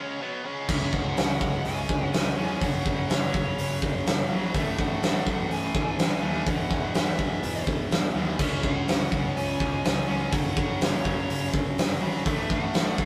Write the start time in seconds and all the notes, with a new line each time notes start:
Already playing: C#3 G#3 C#4 C#5
0.20 B2 F#3 B3
0.44 C#3 G#3 C#4
0.68 C#2 C#3 G#3 C#4 E5, kick, crash
0.92 C#2 F#5, kick
1.17 C#2, snare, open hi-hat
1.41 C#2, kick
1.65 C#2 G#5, open hi-hat
1.89 C#2, kick
2.13 C#2 G#5, snare, open hi-hat
2.37 E2 C#3 G#3 C#4
2.60 F#1 F#2 C#3 F#3 F#5, kick, open hi-hat
2.86 F#1, kick
3.09 F#1 C#5, snare, open hi-hat
3.34 F#1, kick
3.58 F#1, open hi-hat
3.82 F#1, kick
4.06 F#1, snare, open hi-hat
4.29 A#1 F#2 C#3 F#3
4.53 A1 A2 E3 A3 E5, kick, open hi-hat
4.78 A1 F#5, kick
5.02 A1, snare, open hi-hat
5.27 A1, kick
5.50 A1 G#5, open hi-hat
5.74 A1, kick
5.97 A1 G#5, snare, open hi-hat
6.22 D#2 A2 E3 A3
6.46 E1 E2 B2 E3 F#5, kick, open hi-hat
6.70 E1, kick
6.94 E1 E5, snare, open hi-hat
7.19 E1, kick
7.43 E1, open hi-hat
7.67 E1, kick
7.90 E1, snare, open hi-hat
8.15 D#2 E2 B2 E3
8.38 C#2 C#3 G#3 C#4 E5, kick, crash
8.63 C#2 F#5, kick
8.87 C#2, snare, open hi-hat
9.12 C#2, kick
9.36 C#2 G#5, open hi-hat
9.60 C#2, kick
9.84 C#2 G#5, snare, open hi-hat
10.08 C#2 G#3 C#4
10.12 C#3
10.32 F#1 F#2 C#3 F#3 F#5, kick, open hi-hat
10.56 F#1, kick
10.80 F#1 C#5, snare, open hi-hat
11.05 F#1, kick
11.29 F#1, open hi-hat
11.54 F#1, kick
11.78 F#1, snare, open hi-hat
12.01 G#1 F#2 C#3 F#3
12.25 A1 A2 E3 A3 E5, kick, open hi-hat
12.50 A1 F#5, kick
12.74 A1, snare, open hi-hat
12.98 A1, kick